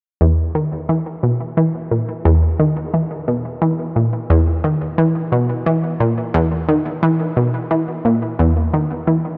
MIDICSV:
0, 0, Header, 1, 2, 480
1, 0, Start_track
1, 0, Tempo, 681818
1, 148, Time_signature, 4, 2, 24, 8
1, 6599, End_track
2, 0, Start_track
2, 0, Title_t, "Synth arpeggio sound"
2, 0, Program_c, 0, 84
2, 148, Note_on_c, 0, 40, 86
2, 346, Note_off_c, 0, 40, 0
2, 387, Note_on_c, 0, 51, 66
2, 519, Note_off_c, 0, 51, 0
2, 627, Note_on_c, 0, 52, 69
2, 825, Note_off_c, 0, 52, 0
2, 867, Note_on_c, 0, 47, 70
2, 999, Note_off_c, 0, 47, 0
2, 1107, Note_on_c, 0, 52, 73
2, 1305, Note_off_c, 0, 52, 0
2, 1348, Note_on_c, 0, 46, 66
2, 1480, Note_off_c, 0, 46, 0
2, 1586, Note_on_c, 0, 40, 97
2, 1785, Note_off_c, 0, 40, 0
2, 1827, Note_on_c, 0, 51, 71
2, 1959, Note_off_c, 0, 51, 0
2, 2067, Note_on_c, 0, 52, 70
2, 2265, Note_off_c, 0, 52, 0
2, 2308, Note_on_c, 0, 47, 69
2, 2440, Note_off_c, 0, 47, 0
2, 2547, Note_on_c, 0, 52, 70
2, 2745, Note_off_c, 0, 52, 0
2, 2788, Note_on_c, 0, 46, 71
2, 2920, Note_off_c, 0, 46, 0
2, 3027, Note_on_c, 0, 40, 89
2, 3226, Note_off_c, 0, 40, 0
2, 3267, Note_on_c, 0, 51, 70
2, 3399, Note_off_c, 0, 51, 0
2, 3506, Note_on_c, 0, 52, 74
2, 3705, Note_off_c, 0, 52, 0
2, 3746, Note_on_c, 0, 47, 70
2, 3879, Note_off_c, 0, 47, 0
2, 3987, Note_on_c, 0, 52, 71
2, 4185, Note_off_c, 0, 52, 0
2, 4225, Note_on_c, 0, 46, 71
2, 4358, Note_off_c, 0, 46, 0
2, 4465, Note_on_c, 0, 40, 93
2, 4664, Note_off_c, 0, 40, 0
2, 4706, Note_on_c, 0, 51, 73
2, 4839, Note_off_c, 0, 51, 0
2, 4947, Note_on_c, 0, 52, 75
2, 5146, Note_off_c, 0, 52, 0
2, 5186, Note_on_c, 0, 47, 69
2, 5319, Note_off_c, 0, 47, 0
2, 5427, Note_on_c, 0, 52, 74
2, 5625, Note_off_c, 0, 52, 0
2, 5667, Note_on_c, 0, 46, 72
2, 5799, Note_off_c, 0, 46, 0
2, 5908, Note_on_c, 0, 40, 90
2, 6106, Note_off_c, 0, 40, 0
2, 6150, Note_on_c, 0, 51, 71
2, 6281, Note_off_c, 0, 51, 0
2, 6388, Note_on_c, 0, 52, 71
2, 6586, Note_off_c, 0, 52, 0
2, 6599, End_track
0, 0, End_of_file